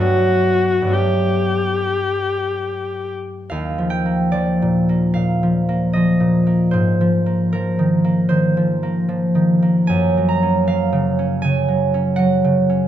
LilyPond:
<<
  \new Staff \with { instrumentName = "Viola" } { \time 4/4 \key g \major \tempo 4 = 75 fis'4 g'2~ g'8 r8 | \key aes \lydian r1 | r1 | r1 | }
  \new Staff \with { instrumentName = "Harp" } { \time 4/4 \key g \major r1 | \key aes \lydian f''8 g''8 d''4 f''4 ees''4 | c''4 bes'4 c''2 | aes''8 bes''8 f''4 aes''4 ges''4 | }
  \new Staff \with { instrumentName = "Harp" } { \clef bass \time 4/4 \key g \major << { <g, fis g a b d'>4 <g, fis a b d'>2.~ | \key aes \lydian <g, fis a b d'>1 | r1 | r1 | } \\ { r1 | \tuplet 3/2 { ees,8 f8 bes8 f8 bes,8 bes8 bes,8 f8 bes8 f8 bes,8 bes8 } | \tuplet 3/2 { aes,8 f8 bes8 f8 ees8 bes8 ees8 f8 bes8 f8 ees8 bes8 } | \tuplet 3/2 { ges,8 ges8 des'8 ges8 des8 des'8 des8 ges8 des'8 ges8 des8 des'8 } | } >> }
>>